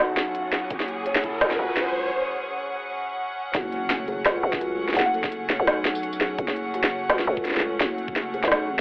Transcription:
0.00 0.70 B1 loud
0.00 8.81 F#3 medium
0.00 8.81 C#4 medium
0.00 1.24 E4 loud
0.00 1.59 F#4 loud
0.00 0.60 A4 medium
0.00 1.06 C#5 loud
0.00 8.81 F#5 medium
0.00 riser medium
0.17 snare medium
0.35 closed hi-hat medium
0.49 3.54 G#4 medium
0.49 snare medium
0.70 1.41 F#1 loud
0.70 kick loud
0.70 closed hi-hat medium
0.80 snare medium
0.88 closed hi-hat soft
1.06 1.22 C#5 loud
1.06 closed hi-hat medium
1.16 snare medium
1.24 1.58 E4 loud
1.24 kick medium
1.24 closed hi-hat soft
1.41 1.58 C#2 medium
1.41 snare loud
1.41 closed hi-hat medium
1.51 snare soft
1.59 2.11 C#2 loud
1.59 1.76 F#4 medium
1.77 snare medium
1.77 closed hi-hat medium
3.54 4.25 F#1 loud
3.54 4.06 F#4 medium
3.54 kick loud
3.54 snare medium
3.54 closed hi-hat medium
3.54 impact medium
3.72 closed hi-hat soft
3.85 8.81 A3 medium
3.90 snare medium
3.90 closed hi-hat medium
4.08 4.60 G#4 medium
4.08 closed hi-hat soft
4.26 4.42 C#2 medium
4.26 snare loud
4.26 snare medium
4.26 closed hi-hat medium
4.43 4.96 C#2 loud
4.53 kick loud
4.53 snare medium
4.61 5.13 F#4 medium
4.61 closed hi-hat medium
4.89 snare soft
4.94 5.58 F#1 loud
4.94 5.03 F#5 medium
4.94 snare medium
4.94 closed hi-hat medium
5.00 snare medium
5.06 5.11 F#5 medium
5.14 5.31 A4 medium
5.14 closed hi-hat soft
5.24 kick loud
5.24 snare medium
5.32 closed hi-hat medium
5.50 snare medium
5.50 closed hi-hat soft
5.60 6.38 B1 medium
5.67 6.19 F#4 medium
5.67 snare loud
5.67 closed hi-hat medium
5.85 snare medium
5.95 tambourine medium
6.03 closed hi-hat medium
6.13 tambourine medium
6.21 6.73 G#4 medium
6.21 snare medium
6.39 7.09 F#1 loud
6.39 kick loud
6.39 closed hi-hat medium
6.48 snare medium
6.56 closed hi-hat soft
6.74 7.26 F#4 medium
6.74 closed hi-hat medium
6.84 snare medium
6.88 closed hi-hat soft
7.10 7.26 C#2 medium
7.10 snare loud
7.10 closed hi-hat medium
7.19 snare medium
7.27 7.80 C#2 loud
7.27 7.44 A4 medium
7.37 kick loud
7.45 snare soft
7.45 closed hi-hat medium
7.48 snare soft
7.51 snare soft
7.55 snare soft
7.57 snare soft
7.60 snare soft
7.81 8.42 F#1 loud
7.81 8.32 F#4 medium
7.81 snare medium
7.81 closed hi-hat medium
7.98 closed hi-hat soft
8.08 kick loud
8.16 snare medium
8.16 closed hi-hat medium
8.34 8.81 G#4 medium
8.34 closed hi-hat soft
8.43 8.71 B1 medium
8.43 snare medium
8.48 snare soft
8.52 snare loud
8.52 closed hi-hat medium
8.69 8.81 G#1 medium

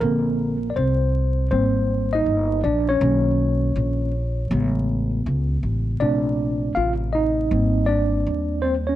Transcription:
0.00 0.72 A#1 medium
0.00 0.56 D3 medium
0.00 0.68 A#3 medium
0.00 0.56 C4 medium
0.00 0.56 A4 soft
0.00 0.73 A#4 medium
0.70 0.76 D5 medium
0.76 1.48 C2 medium
0.76 1.48 C4 medium
0.76 1.47 C5 medium
1.51 2.22 G#1 medium
1.51 2.60 G3 soft
1.51 2.60 A#3 soft
1.51 2.10 C4 medium
1.51 2.15 C5 medium
2.13 2.61 D#4 medium
2.13 2.60 D#5 loud
2.26 2.62 G1 medium
2.64 2.99 A#1 medium
2.64 2.88 D4 medium
2.64 2.89 D5 medium
2.89 3.02 C#4 medium
2.89 5.10 C#5 medium
3.01 3.72 B1 loud
3.01 4.10 D#3 medium
3.01 4.11 A#3 soft
3.01 4.11 C#4 medium
3.76 4.47 A#1 loud
4.51 5.22 A1 loud
4.51 5.97 C#3 medium
4.51 5.97 G#3 soft
4.51 5.98 B3 medium
5.26 5.62 C#2 medium
5.63 5.99 A1 medium
6.00 6.72 A#1 medium
6.00 7.47 C3 soft
6.00 7.48 A3 medium
6.00 7.48 C4 medium
6.00 6.73 D4 medium
6.00 6.72 D5 loud
6.75 7.47 A1 medium
6.75 6.94 F4 medium
6.75 6.92 F5 loud
7.13 7.85 D#4 medium
7.13 7.84 D#5 medium
7.51 8.22 G#1 medium
7.51 8.96 G3 soft
7.51 8.96 A#3 soft
7.51 8.62 C4 medium
7.86 8.60 D4 medium
7.86 8.65 D5 medium
8.27 8.96 D#2 medium
8.62 8.75 C4 medium
8.62 8.73 C5 medium
8.87 8.96 C#4 medium
8.87 8.96 C#5 medium

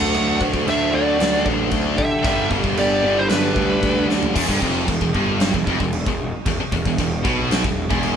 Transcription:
0.00 0.13 D2 medium
0.00 0.65 D3 medium
0.00 0.66 F#3 medium
0.00 0.66 A3 medium
0.00 0.70 D4 loud
0.00 0.37 A4 medium
0.00 0.39 F#5 medium
0.14 0.39 D2 loud
0.14 crash medium
0.40 0.65 D2 medium
0.40 kick loud
0.54 kick medium
0.66 0.92 D2 medium
0.66 1.97 D3 medium
0.66 1.97 F#3 medium
0.66 1.98 A3 medium
0.66 0.91 A4 medium
0.66 0.95 E5 loud
0.66 crash medium
0.70 1.99 D4 medium
0.92 1.18 D2 loud
0.92 1.42 F#4 medium
0.92 1.43 D5 loud
1.19 1.44 D2 loud
1.19 snare loud
1.19 crash medium
1.46 1.71 A1 medium
1.46 kick medium
1.71 1.96 D2 medium
1.71 kick medium
1.71 crash medium
1.97 2.23 D3 medium
1.97 2.47 G4 medium
1.97 2.47 E5 loud
1.97 kick medium
2.22 2.49 G1 loud
2.22 3.01 G2 medium
2.22 3.01 D3 loud
2.22 3.02 G3 medium
2.22 3.02 B3 loud
2.22 3.00 D4 medium
2.22 kick loud
2.22 crash medium
2.51 2.76 G1 medium
2.51 kick medium
2.64 kick medium
2.77 3.02 G1 loud
2.77 3.14 G4 loud
2.77 3.19 D5 loud
2.77 crash medium
3.02 3.28 G1 medium
3.02 4.34 G2 medium
3.02 4.35 D3 medium
3.02 4.34 G3 medium
3.02 4.34 B3 medium
3.02 4.33 D4 medium
3.15 3.28 E4 medium
3.15 3.29 C5 medium
3.29 3.55 G1 loud
3.29 4.06 D4 medium
3.29 4.05 B4 medium
3.29 snare loud
3.29 crash medium
3.56 3.81 D2 medium
3.56 kick medium
3.83 4.08 D2 medium
3.83 kick medium
3.83 crash medium
4.08 4.34 D2 medium
4.08 snare medium
4.23 floor tom loud
4.34 4.48 E1 loud
4.34 4.47 E2 loud
4.34 kick loud
4.34 crash loud
4.34 china medium
4.48 4.61 G1 medium
4.48 4.60 G2 loud
4.48 kick medium
4.61 4.86 F1 medium
4.61 4.86 F2 loud
4.61 kick medium
4.87 5.00 E1 medium
4.87 4.99 E2 medium
4.87 kick loud
4.87 china medium
5.00 5.13 E1 medium
5.00 5.13 E2 medium
5.00 kick medium
5.14 5.51 G1 loud
5.14 5.53 G2 loud
5.14 kick medium
5.40 snare loud
5.40 china medium
5.54 5.66 E1 medium
5.54 5.66 E2 medium
5.54 kick medium
5.67 5.79 F1 medium
5.67 5.79 F2 loud
5.67 kick medium
5.80 6.05 E1 medium
5.80 6.02 E2 medium
5.80 kick medium
5.93 china medium
6.06 6.31 E1 medium
6.06 6.28 E2 medium
6.06 kick medium
6.46 6.58 E1 medium
6.46 6.59 E2 medium
6.46 kick loud
6.46 china medium
6.60 muted picked electric bass stroke soft
6.60 muted distorted electric guitar stroke medium
6.60 muted overdriven electric guitar stroke medium
6.72 6.84 E1 medium
6.72 6.84 E2 medium
6.72 kick loud
6.85 6.98 E1 medium
6.85 6.97 E2 medium
6.85 kick medium
6.98 7.23 E1 medium
6.98 7.20 E2 medium
6.98 kick loud
6.98 china medium
7.24 7.62 B1 loud
7.24 7.63 B2 loud
7.24 kick loud
7.51 snare loud
7.51 china medium
7.63 7.89 E1 medium
7.63 7.85 E2 medium
7.63 kick medium
7.90 8.15 E1 medium
7.90 8.15 E2 loud
7.90 kick loud
8.03 china medium

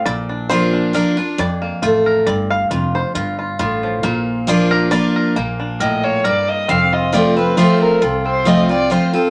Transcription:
0.00 0.29 F4 medium
0.06 0.98 A#1 medium
0.06 0.90 A#2 medium
0.06 0.49 D5 loud
0.29 0.72 D4 medium
0.49 0.92 F3 medium
0.49 0.92 A#3 loud
0.49 0.93 D4 medium
0.49 0.93 F4 medium
0.49 0.95 C5 loud
0.73 1.16 D4 medium
0.93 1.16 F3 medium
0.93 1.17 A#3 medium
0.93 1.17 D4 medium
0.93 1.16 F4 medium
0.93 1.40 A#4 medium
1.17 1.78 D4 medium
1.17 1.38 D4 medium
1.17 1.37 F4 medium
1.38 2.23 F2 medium
1.38 1.69 F2 medium
1.38 1.80 D5 medium
1.62 2.23 A#3 medium
1.82 2.20 A1 medium
1.82 2.25 A3 medium
1.82 2.71 F4 medium
2.06 2.67 A#4 medium
2.26 2.64 G1 medium
2.26 2.69 G2 medium
2.26 2.50 D5 medium
2.50 2.70 F5 loud
2.71 3.02 F1 loud
2.71 3.15 F2 medium
2.71 3.15 F4 medium
2.95 3.14 C5 medium
3.15 3.53 G1 medium
3.15 3.57 G2 medium
3.15 3.38 F4 medium
3.39 3.59 F4 medium
3.59 3.97 A1 medium
3.59 4.01 A2 medium
3.59 4.48 F4 medium
3.83 5.23 F3 medium
4.03 4.96 A#1 loud
4.03 4.88 A#2 medium
4.03 4.67 A#3 medium
4.47 4.90 F3 loud
4.47 4.90 A#3 loud
4.47 4.90 D4 loud
4.47 4.91 F4 medium
4.47 4.91 F4 loud
4.71 4.92 A#4 medium
4.91 5.34 F3 medium
4.91 5.34 A#3 medium
4.91 5.34 D4 medium
4.91 5.35 F4 medium
4.91 5.13 D5 loud
5.16 5.36 A#4 medium
5.36 6.29 A#1 medium
5.36 6.21 A#2 medium
5.36 5.99 A#3 medium
5.60 6.21 D4 medium
5.80 6.23 A2 medium
5.80 6.23 A#4 medium
5.80 6.05 D#5 medium
6.04 6.47 A#3 medium
6.04 6.26 C#5 medium
6.24 6.67 G2 medium
6.24 6.69 A#4 medium
6.24 6.50 D5 medium
6.48 6.68 A#3 soft
6.48 6.71 D#5 medium
6.68 7.62 F1 medium
6.68 7.54 F2 medium
6.68 7.36 C4 medium
6.68 6.95 F5 medium
6.93 7.13 F4 medium
6.93 7.15 D#5 medium
7.12 7.36 F3 medium
7.12 7.36 A3 loud
7.12 7.36 C4 medium
7.12 7.57 F4 medium
7.12 7.35 F4 loud
7.12 7.36 D5 medium
7.36 7.81 C4 medium
7.36 7.57 C4 medium
7.36 7.57 F4 medium
7.36 7.59 B4 medium
7.57 8.00 F3 medium
7.57 8.00 A3 medium
7.57 8.00 C4 medium
7.57 8.01 F4 medium
7.57 7.81 C5 medium
7.81 8.25 C4 soft
7.81 8.04 A#4 medium
8.02 8.95 C2 medium
8.02 8.87 C3 medium
8.02 8.46 F4 medium
8.02 8.25 A4 medium
8.25 8.87 C4 medium
8.25 8.48 C5 medium
8.45 8.69 F3 medium
8.45 8.69 A3 medium
8.45 8.69 C4 loud
8.45 8.70 F4 medium
8.45 8.68 F4 loud
8.45 8.69 D#5 loud
8.69 8.90 C4 soft
8.69 8.89 F4 medium
8.69 8.91 F4 medium
8.69 8.92 D5 medium
8.90 9.13 F3 medium
8.90 9.13 A3 medium
8.90 9.14 C4 medium
8.90 9.30 F4 medium
8.90 9.12 F4 medium
8.90 9.14 C5 medium
9.13 9.30 C4 medium
9.13 9.30 F4 medium
9.13 9.30 A4 loud

